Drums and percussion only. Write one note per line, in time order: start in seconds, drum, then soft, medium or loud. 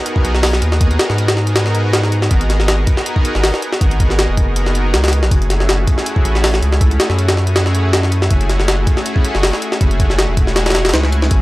0.06 closed hi-hat medium
0.16 kick medium
0.25 closed hi-hat medium
0.35 snare soft
0.43 snare loud
0.43 open hi-hat medium
0.53 snare medium
0.62 closed hi-hat medium
0.72 snare medium
0.81 kick loud
0.81 closed hi-hat medium
0.91 closed hi-hat soft
0.99 snare loud
0.99 closed hi-hat medium
1.10 snare soft
1.18 closed hi-hat medium
1.28 snare medium
1.28 closed hi-hat medium
1.37 snare soft
1.47 closed hi-hat medium
1.56 snare loud
1.56 closed hi-hat medium
1.66 snare soft
1.75 closed hi-hat medium
1.93 snare loud
1.93 closed hi-hat medium
2.03 snare medium
2.12 closed hi-hat medium
2.22 snare medium
2.31 kick loud
2.31 closed hi-hat medium
2.41 closed hi-hat soft
2.50 snare soft
2.50 closed hi-hat medium
2.60 snare soft
2.68 snare loud
2.68 closed hi-hat medium
2.87 kick loud
2.87 closed hi-hat medium
2.97 snare soft
3.06 closed hi-hat medium
3.16 kick medium
3.25 closed hi-hat medium
3.35 snare soft
3.44 snare loud
3.44 open hi-hat medium
3.54 snare medium
3.62 closed hi-hat medium
3.73 snare medium
3.81 kick loud
3.81 closed hi-hat medium
3.91 closed hi-hat soft
4.00 kick medium
4.00 closed hi-hat medium
4.10 snare soft
4.19 snare loud
4.19 closed hi-hat medium
4.37 kick medium
4.37 closed hi-hat medium
4.56 closed hi-hat medium
4.66 snare soft
4.75 closed hi-hat medium
4.94 snare loud
4.94 closed hi-hat medium
5.04 snare medium
5.04 closed hi-hat medium
5.08 snare medium
5.08 closed hi-hat medium
5.13 closed hi-hat medium
5.23 snare medium
5.31 kick loud
5.31 closed hi-hat medium
5.42 closed hi-hat soft
5.50 snare soft
5.50 closed hi-hat medium
5.60 snare soft
5.69 snare loud
5.69 closed hi-hat medium
5.87 kick medium
5.87 closed hi-hat medium
5.98 snare soft
6.06 closed hi-hat medium
6.16 kick loud
6.25 closed hi-hat medium
6.35 snare soft
6.44 snare loud
6.44 open hi-hat medium
6.54 snare medium
6.62 closed hi-hat medium
6.72 snare medium
6.81 kick loud
6.81 closed hi-hat medium
6.91 closed hi-hat soft
7.00 snare loud
7.00 closed hi-hat medium
7.10 snare soft
7.19 closed hi-hat medium
7.28 snare loud
7.28 closed hi-hat medium
7.37 snare soft
7.47 closed hi-hat medium
7.56 snare loud
7.56 closed hi-hat medium
7.66 snare medium
7.75 closed hi-hat medium
7.93 snare loud
7.93 closed hi-hat medium
8.03 snare medium
8.12 closed hi-hat medium
8.22 snare medium
8.30 kick loud
8.30 closed hi-hat medium
8.41 closed hi-hat soft
8.49 snare soft
8.49 closed hi-hat medium
8.60 snare soft
8.68 snare loud
8.68 closed hi-hat medium
8.87 kick medium
8.87 closed hi-hat medium
8.97 snare soft
9.06 closed hi-hat medium
9.16 kick loud
9.25 closed hi-hat medium
9.35 snare soft
9.43 snare loud
9.43 open hi-hat medium
9.53 snare medium
9.62 closed hi-hat medium
9.72 snare medium
9.81 kick loud
9.81 closed hi-hat medium
9.91 closed hi-hat soft
10.00 kick medium
10.00 closed hi-hat medium
10.10 snare soft
10.19 snare loud
10.19 closed hi-hat medium
10.37 kick medium
10.37 closed hi-hat medium
10.47 snare soft
10.56 snare loud
10.56 closed hi-hat medium
10.66 snare medium
10.66 closed hi-hat medium
10.70 snare medium
10.70 closed hi-hat medium
10.75 snare loud
10.75 closed hi-hat medium
10.85 snare medium
10.85 closed hi-hat medium
10.89 snare medium
10.89 closed hi-hat medium
10.94 snare loud
10.94 closed hi-hat medium
11.04 snare medium
11.12 closed hi-hat medium
11.22 snare medium
11.31 kick loud
11.31 closed hi-hat medium